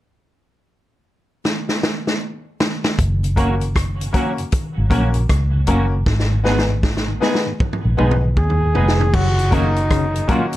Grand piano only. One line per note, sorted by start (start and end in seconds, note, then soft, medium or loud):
3.36 3.61 A#3 medium
3.36 3.61 C#4 medium
3.36 3.61 F#4 medium
3.36 3.62 A#4 medium
4.13 4.38 A#3 medium
4.13 4.38 C#4 medium
4.13 4.38 F#4 medium
4.13 4.38 A#4 loud
4.90 5.15 A#3 medium
4.90 5.15 C#4 medium
4.90 5.13 F#4 medium
4.90 5.13 A#4 medium
5.14 5.20 F#4 soft
5.14 5.20 A#4 soft
5.67 5.92 A#3 medium
5.67 5.92 C#4 medium
5.67 5.92 F#4 medium
5.67 5.92 A#4 loud
6.44 6.69 B3 medium
6.44 6.69 D#4 medium
6.44 6.69 G#4 medium
6.44 6.69 B4 loud
7.20 7.46 B3 medium
7.20 7.46 D#4 medium
7.20 7.46 G#4 medium
7.20 7.46 B4 loud
7.97 8.22 B3 medium
7.97 8.23 D#4 medium
7.97 8.20 G#4 medium
7.97 8.20 B4 medium
8.22 8.28 G#4 soft
8.22 8.28 B4 soft
8.74 8.99 B3 medium
8.74 8.99 D#4 medium
8.74 8.98 G#4 medium
8.74 8.98 B4 loud
8.99 9.05 G#4 soft
8.99 9.05 B4 soft
9.51 9.76 A#3 medium
9.51 9.76 C#4 medium
9.51 9.76 F#4 medium
9.51 9.77 A#4 loud
10.14 10.20 F#4 soft
10.14 10.20 A#4 soft
10.28 10.53 A#3 medium
10.28 10.53 C#4 medium
10.28 10.53 F#4 medium
10.28 10.53 A#4 loud